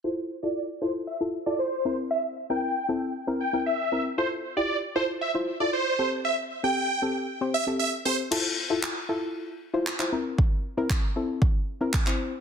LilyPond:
<<
  \new Staff \with { instrumentName = "Supersaw synth" } { \time 4/4 \key f \major \tempo 4 = 116 c''16 r8 d''8 r16 c''16 r16 e''16 r8 d''16 c''8. r16 | e''16 r8 g''8. r4 g''8 e''8. r16 | c''16 r8 d''8 r16 c''16 r16 e''16 r8 d''16 c''8. r16 | e''16 r8 g''8. r4 e''16 r16 e''16 r16 c''16 r16 |
r1 | r1 | }
  \new Staff \with { instrumentName = "Synth pluck" } { \time 4/4 \key f \major <e' f' a'>8 r16 <e' f' a'>8 r16 <e' f' a'>8 r16 <e' f' a'>16 r16 <e' f' a'>8 r16 <c' e' bes'>8~ | <c' e' bes'>8 r16 <c' e' bes'>8 r16 <c' e' a'>8 r16 <c' e' bes'>16 r16 <c' e' bes'>8 r16 <c' e' bes'>16 r16 | <e' f' a'>8 r16 <e' f' g'>8 r16 <e' f' a'>8 r16 <e' f' c''>16 r16 <e' f' a'>8 r16 <c' g' a'>8~ | <c' g' a'>8 r16 <c' g' a'>8 r16 <c' g' a'>8 r16 <c' g' c''>16 r16 <c' g' a'>8 r16 <c' g' a'>16 r16 |
<e' f' a'>8 r16 <e' f' a'>8 r16 <e' f' a'>8. r8 <e' f' c''>16 r16 <e' f' c''>16 <c' e' bes'>8~ | <c' e' bes'>8 r16 <c' e' bes'>8 r16 <c' e' a'>8. r8 <c' e' bes'>16 r16 <c' e' c''>8 r16 | }
  \new DrumStaff \with { instrumentName = "Drums" } \drummode { \time 4/4 r4 r4 r4 r4 | r4 r4 r4 r4 | r4 r4 r4 r4 | r4 r4 r4 r4 |
cymc4 hc4 r4 hc16 hc8. | bd4 <hc bd>4 bd4 <hc bd>16 hc8. | }
>>